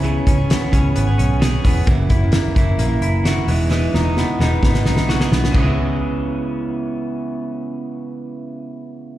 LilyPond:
<<
  \new Staff \with { instrumentName = "Clean electric guitar" } { \time 4/4 \key cis \dorian \tempo 4 = 130 cis8 cis'8 b8 cis'8 b8 cis'8 gis'8 b8 | fis,8 e'8 ais8 e'8 ais8 e'8 fis'8 e8 | e8 dis'8 b8 dis'8 b8 dis'8 fis'16 gis'16 b8 | <cis e b cis' gis'>1~ |
<cis e b cis' gis'>1 | }
  \new Staff \with { instrumentName = "Clean electric guitar" } { \time 4/4 \key cis \dorian <cis e b cis' gis'>8. <b cis' gis'>8. <e b cis' gis'>8. <b cis' gis'>8. <e b cis' gis'>8 <e b cis' gis'>8 | <fis, cis e ais e'>8. <e ais e'>8. <cis e ais e'>8. <e ais e'>8. <cis e ais e'>8 <e gis b dis'>8 | <e gis b dis'>8. <gis b dis'>8. <e gis b dis'>8. <gis b dis'>8. <e gis b dis'>8 <e gis b dis'>8 | <cis gis b e'>1~ |
<cis gis b e'>1 | }
  \new Staff \with { instrumentName = "Fingered electric bass" } { \clef bass \time 4/4 \key cis \dorian cis,8 cis,8. r16 cis,8 gis,,8 b,,4 e,,8 | fis,,8 fis,,8. r16 fis,,8 ais,,8 fis,,4 e,,8~ | e,,8 e,,8. r16 e,,8 gis,,8 b,,4 b,,8 | cis,1~ |
cis,1 | }
  \new DrumStaff \with { instrumentName = "Drums" } \drummode { \time 4/4 hh8 <hh bd>8 <hh sn>8 <hh bd>8 hh8 hh8 <hh sn>8 <hho bd>8 | <hh bd>8 <hh bd>8 <hh sn>8 <hh bd>8 hh8 hh8 <hh sn>8 hho8 | sn8 sn8 sn8 sn8 <bd sn>16 sn16 sn16 sn16 sn16 sn16 sn16 sn16 | <cymc bd>4 r4 r4 r4 |
r4 r4 r4 r4 | }
>>